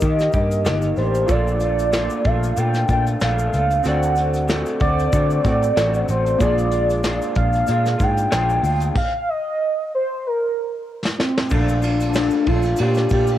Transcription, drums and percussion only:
0.00 kick loud
0.00 closed hi-hat medium
0.00 shaker medium
0.19 snare soft
0.19 closed hi-hat soft
0.19 shaker soft
0.32 kick medium
0.32 closed hi-hat medium
0.32 shaker soft
0.51 closed hi-hat soft
0.51 shaker soft
0.65 snare loud
0.65 shaker medium
0.82 closed hi-hat soft
0.82 shaker soft
0.96 closed hi-hat medium
0.96 shaker medium
1.15 closed hi-hat medium
1.15 shaker soft
1.28 kick loud
1.28 closed hi-hat medium
1.28 shaker medium
1.48 shaker soft
1.60 closed hi-hat medium
1.60 shaker soft
1.79 closed hi-hat medium
1.79 shaker soft
1.93 snare loud
1.93 shaker medium
2.10 shaker soft
2.24 kick medium
2.24 closed hi-hat medium
2.43 closed hi-hat medium
2.43 shaker soft
2.56 closed hi-hat medium
2.56 shaker medium
2.74 snare soft
2.74 closed hi-hat soft
2.74 shaker soft
2.88 kick medium
2.88 closed hi-hat medium
2.88 shaker soft
3.07 closed hi-hat soft
3.07 shaker soft
3.20 snare loud
3.20 shaker medium
3.39 shaker soft
3.53 closed hi-hat medium
3.53 shaker medium
3.70 closed hi-hat medium
3.70 shaker soft
3.83 closed hi-hat medium
3.83 shaker medium
4.03 closed hi-hat soft
4.03 shaker medium
4.15 closed hi-hat medium
4.15 shaker soft
4.34 closed hi-hat medium
4.34 shaker soft
4.48 snare loud
4.48 shaker medium
4.66 closed hi-hat soft
4.66 shaker soft
4.80 kick medium
4.80 closed hi-hat medium
4.99 closed hi-hat medium
4.99 shaker soft
5.13 kick loud
5.13 closed hi-hat medium
5.13 shaker medium
5.31 closed hi-hat soft
5.31 shaker soft
5.44 kick medium
5.44 closed hi-hat medium
5.44 shaker soft
5.62 closed hi-hat soft
5.62 shaker medium
5.77 snare loud
5.77 shaker medium
5.94 closed hi-hat soft
5.94 shaker medium
6.08 closed hi-hat medium
6.08 shaker soft
6.26 closed hi-hat medium
6.26 shaker soft
6.40 kick loud
6.40 closed hi-hat medium
6.40 shaker medium
6.58 closed hi-hat soft
6.58 shaker soft
6.72 closed hi-hat medium
6.72 shaker soft
6.90 closed hi-hat medium
6.90 shaker soft
7.04 snare loud
7.04 shaker medium
7.22 closed hi-hat soft
7.22 shaker soft
7.35 kick medium
7.35 closed hi-hat medium
7.53 closed hi-hat medium
7.53 shaker soft
7.67 closed hi-hat medium
7.67 shaker medium
7.86 snare soft
7.86 closed hi-hat soft
7.86 shaker soft
8.00 kick medium
8.00 closed hi-hat medium
8.00 shaker soft
8.17 closed hi-hat soft
8.17 shaker soft
8.32 snare loud
8.32 shaker medium
8.50 closed hi-hat soft
8.50 shaker soft
8.64 open hi-hat medium
8.64 shaker soft
8.80 closed hi-hat medium
8.80 shaker soft
8.95 kick loud
8.95 crash medium
11.05 snare medium
11.20 snare loud
11.37 snare loud
11.50 kick loud
11.50 crash medium
11.50 shaker medium
11.69 shaker medium
11.82 ride medium
11.82 shaker soft
12.00 ride medium
12.00 shaker soft
12.14 snare loud
12.14 ride medium
12.14 shaker medium
12.30 ride soft
12.30 shaker soft
12.46 kick medium
12.46 ride medium
12.62 ride soft
12.62 shaker soft
12.76 ride medium
12.76 shaker medium
12.94 snare soft
12.94 ride soft
12.94 shaker soft
13.09 kick medium
13.09 ride medium
13.09 shaker soft
13.27 ride soft
13.27 shaker soft

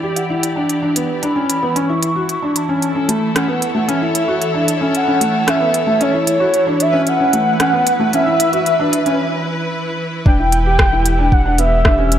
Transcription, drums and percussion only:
0.16 closed hi-hat soft
0.43 closed hi-hat medium
0.69 closed hi-hat soft
0.96 closed hi-hat medium
1.23 closed hi-hat soft
1.50 closed hi-hat medium
1.76 closed hi-hat soft
2.03 closed hi-hat medium
2.29 closed hi-hat soft
2.56 closed hi-hat medium
2.82 closed hi-hat soft
3.09 closed hi-hat medium
3.36 cross-stick medium
3.36 closed hi-hat soft
3.62 closed hi-hat medium
3.89 closed hi-hat soft
4.15 closed hi-hat medium
4.42 closed hi-hat soft
4.68 closed hi-hat medium
4.95 closed hi-hat soft
5.21 closed hi-hat medium
5.48 cross-stick medium
5.48 closed hi-hat soft
5.74 closed hi-hat medium
6.01 closed hi-hat soft
6.27 closed hi-hat medium
6.54 closed hi-hat soft
6.80 closed hi-hat medium
7.07 closed hi-hat soft
7.33 closed hi-hat medium
7.60 cross-stick medium
7.60 closed hi-hat soft
7.87 closed hi-hat medium
8.13 closed hi-hat soft
8.40 closed hi-hat medium
8.53 closed hi-hat soft
8.66 closed hi-hat soft
8.93 closed hi-hat medium
9.06 closed hi-hat soft
10.26 kick loud
10.52 closed hi-hat medium
10.79 kick loud
10.79 cross-stick loud
11.06 closed hi-hat medium
11.32 kick medium
11.58 closed hi-hat medium
11.85 kick loud
11.85 cross-stick medium
12.12 closed hi-hat medium

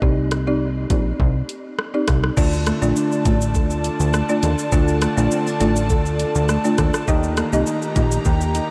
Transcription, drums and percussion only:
0.02 kick loud
0.31 cross-stick medium
0.31 closed hi-hat medium
0.90 kick loud
0.90 closed hi-hat medium
1.20 kick medium
1.49 closed hi-hat medium
1.79 cross-stick medium
2.08 kick medium
2.08 cross-stick medium
2.08 closed hi-hat medium
2.24 cross-stick medium
2.37 kick loud
2.37 crash medium
2.37 shaker medium
2.53 shaker soft
2.66 cross-stick medium
2.66 closed hi-hat medium
2.66 shaker medium
2.82 shaker medium
2.96 shaker medium
3.12 shaker soft
3.25 kick loud
3.25 closed hi-hat medium
3.25 shaker soft
3.41 shaker medium
3.55 kick medium
3.55 shaker medium
3.71 shaker soft
3.84 closed hi-hat medium
3.84 shaker soft
4.00 shaker medium
4.14 cross-stick medium
4.14 shaker medium
4.29 shaker medium
4.43 closed hi-hat medium
4.43 shaker medium
4.59 shaker medium
4.72 kick loud
4.72 shaker medium
4.88 shaker soft
5.02 cross-stick medium
5.02 closed hi-hat medium
5.02 shaker medium
5.18 shaker medium
5.31 shaker medium
5.47 shaker soft
5.61 closed hi-hat medium
5.61 shaker soft
5.76 shaker medium
5.90 kick medium
5.90 shaker medium
6.06 shaker soft
6.20 closed hi-hat medium
6.20 shaker soft
6.35 shaker medium
6.49 cross-stick medium
6.49 shaker medium
6.65 shaker medium
6.78 kick medium
6.78 cross-stick medium
6.78 closed hi-hat medium
6.78 shaker medium
6.94 cross-stick medium
6.94 shaker medium
7.08 kick loud
7.08 shaker medium
7.23 shaker soft
7.37 cross-stick loud
7.37 closed hi-hat medium
7.37 shaker medium
7.53 shaker medium
7.67 shaker medium
7.82 shaker soft
7.96 kick loud
7.96 closed hi-hat medium
7.96 shaker medium
8.12 shaker medium
8.25 kick medium
8.25 shaker medium
8.41 shaker soft
8.55 closed hi-hat medium
8.55 shaker soft

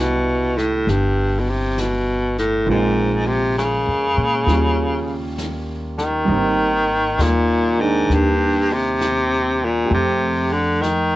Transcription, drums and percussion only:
0.58 snare soft
0.88 brush sweep soft
0.88 snare soft
1.78 snare soft
1.78 hi-hat pedal soft
2.38 snare soft
2.67 brush sweep soft
3.59 snare soft
3.59 hi-hat pedal soft
4.48 brush sweep soft
4.48 snare soft
5.38 snare soft
5.38 hi-hat pedal soft
5.98 snare soft
6.29 brush sweep soft
7.19 snare soft
7.19 hi-hat pedal soft
8.11 brush sweep soft
8.11 snare soft
9.01 snare soft
9.01 hi-hat pedal soft
9.93 brush sweep soft
10.83 snare soft
10.83 hi-hat pedal soft

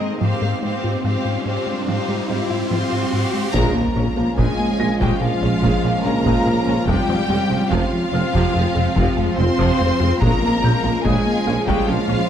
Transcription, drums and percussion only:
3.55 taiko medium
4.38 taiko medium
5.01 taiko medium
5.64 taiko medium
6.26 taiko medium
6.89 taiko medium
7.72 taiko medium
8.35 taiko medium
8.97 taiko medium
9.60 taiko medium
10.22 taiko medium
11.06 taiko medium
11.68 taiko medium

